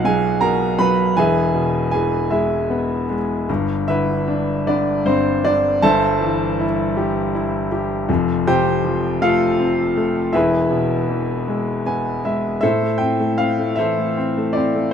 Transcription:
Already playing: B1 B2 F#3 D#4 F4 F#4 F5 F#5
0.05 F#3 G#4 G#5
0.41 B2 A#4 A#5
0.79 F#3 B4 B5
1.17 E1 E2 G#4 B4 E5 G#5
1.54 B2
1.91 E3 G#4 G#5
2.30 G#3 E4 G#4 E5
2.70 B3
3.09 G#3
3.49 G1 G2
3.88 D3 E4 B4 E5
4.28 D4
4.67 D3 D4 D5
5.05 G2 C4 C5
5.44 D3 D4 D5
5.82 G1 G2 A4 C5 E5 A5
6.21 E3
6.59 E4
6.97 G4
7.35 E4
7.72 G4
8.09 F1 F2
8.47 C3 G4 C5 G5
8.84 F3
9.21 A3 F4 A4 F5
9.60 C4
9.97 A3
10.33 E1 E2 E4 G#4 B4 E5
10.71 B2
11.09 E3
11.48 G#3
11.86 B3 G#5
12.25 G#3 E5
12.61 A2 A4 C5 E5
12.82 A3
12.98 C4 G5
13.20 A3
13.38 C4 F5
13.59 A3
13.76 E3 A4 C5 E5
13.98 A3
14.17 C4
14.37 A3
14.53 C4 D5
14.75 A3

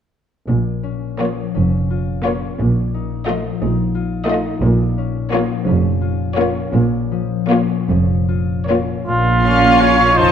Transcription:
0.48 A#1 A#2
0.83 C#4
1.19 F3 A#3 F4 C#5
1.54 F1 F2 C#4
1.90 F4
2.25 A#3 C#4 F4 C#5
2.59 A#1 A#2
2.94 D#4
3.27 F3 A3 F4 D#5
3.61 A#1 A#2 D#4
3.95 F4
4.27 A3 D#4 F4 D#5
4.62 A#1 A#2
4.98 C#4
5.32 F3 A#3 F4 C#5
5.67 F1 F2 C#4
6.02 F4
6.37 A#3 C#4 F4 C#5
6.73 A#1 A#2
7.12 F3
7.49 A#3 C#4 F4 C#5
7.89 F1 F2 F3
8.28 F4
8.68 A#3 C#4 F4 C#5
9.07 A#1 A#2 F4
9.44 C#4 F4 F5
9.81 F4 A#4 C#5
10.18 F1 F2 D#4 F4 C5 A5

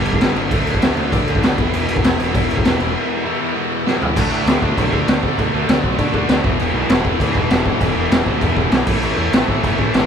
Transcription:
Already playing: G2 D3 G3 B3 D4
0.05 G1, crash
0.13 kick
0.20 G1 G2 D3 G3 B3 D4, snare, crash
0.36 G1 G2 D3 G3 B3 D4, crash
0.51 D2 D3 F#3 A3 D4, kick, crash
0.67 D2, crash
0.74 kick
0.82 D2 D3 F#3 A3 D4, snare, crash
0.96 D2 D3 F#3 A3 D4, crash
1.12 D2 D3 F#3 A3 D4, kick, crash
1.28 D2, crash
1.35 kick
1.43 D2 D3 F#3 A3 D4, snare, crash
1.57 E1 E2 B2 E3 G#3 B3 E4, kick, crash
1.73 E1 E2 B2 E3 G#3 B3 E4, crash
1.89 E1, crash
1.96 kick
2.03 E1 E2 B2 E3 G#3 B3 E4, snare, crash
2.18 E1 E2 B2 E3 G#3 B3 E4, crash
2.34 E1 E2 B2 E3 G#3 B3 E4, kick, crash
2.50 E1, crash
2.57 kick
2.65 E1 E2 B2 E3 G#3 B3 E4, snare, crash
2.80 E1 E2 B2 E3 G#3 B3 E4, crash
2.95 E2 B2 E3 G#3 B3 E4
3.25 E2 B2 E3 G#3 B3 E4
3.40 E2 B2 E3 G#3 B3 E4
3.54 E2 B2 E3 G#3 B3 E4
3.86 E2 B2 E3 G#3 B3 E4, snare
4.01 E2 B2 E3 G#3 B3 E4, floor tom
4.16 D2 D3 A3 D4 F#4, kick, crash
4.31 A2 D3 A3 D4 F#4
4.46 D2 D3 A3 D4 F#4, snare, crash
4.62 D2 D3 A3 D4 F#4, kick
4.77 B1 D3 A3 D4 F#4, kick, crash
4.92 D2 D3 A3 D4 F#4, kick
5.06 D2 D3 A3 D4 F#4, snare, crash
5.22 D3 A3 D4 F#4, kick
5.37 D2 D3 A3 D4 F#4, kick, crash
5.53 D2 D3 A3 D4 F#4
5.68 D2 D3 A3 D4 F#4, snare, crash
5.84 B1 D3 A3 D4 F#4, kick
5.99 D3 A3 D4 F#4, kick, crash
6.14 D2 D3 A3 D4 F#4, kick
6.29 D2 D3 A3 D4 F#4, snare, crash
6.44 E1 E2 B2 E3 G#3 B3 E4, kick
6.59 E1 E2 B2 E3 G#3 B3 E4, crash
6.74 B1 E2 B2 E3 G#3 B3 E4
6.89 E1 E2 B2 E3 G#3 B3 E4, snare, crash
7.05 E1 E2 B2 E3 G#3 B3 E4, kick
7.20 D2 E2 B2 E3 G#3 B3 E4, kick, crash
7.34 E1 E2 B2 E3 G#3 B3 E4, kick
7.50 E1 E2 B2 E3 G#3 B3 E4, snare, crash
7.65 E2 B2 E3 G#3 B3 E4, kick
7.81 E1 E2 B2 E3 G#3 B3 E4, kick, crash
7.95 E1 E2 B2 E3 G#3 B3 E4
8.10 E1 E2 B2 E3 G#3 B3 E4, snare, crash
8.26 D2 E2 B2 E3 G#3 B3 E4, kick
8.41 E2 B2 E3 G#3 B3 E4, kick, crash
8.57 E1 E2 B2 E3 G#3 B3 E4, kick
8.71 B1 E2 B2 E3 G#3 B3 E4, snare, crash
8.87 A1 A2 E3 A3 C#4 E4, kick, crash
9.02 A1 A2 E3 A3 C#4 E4, crash
9.18 E2 A2 E3 A3 C#4 E4
9.33 A1 A2 E3 A3 C#4 E4, snare, crash
9.48 A1 A2 E3 A3 C#4 E4, kick
9.63 F#1 A2 E3 A3 C#4 E4, kick, crash
9.78 A1 A2 E3 A3 C#4 E4, kick
9.94 A1 A2 E3 A3 C#4 E4, snare, crash

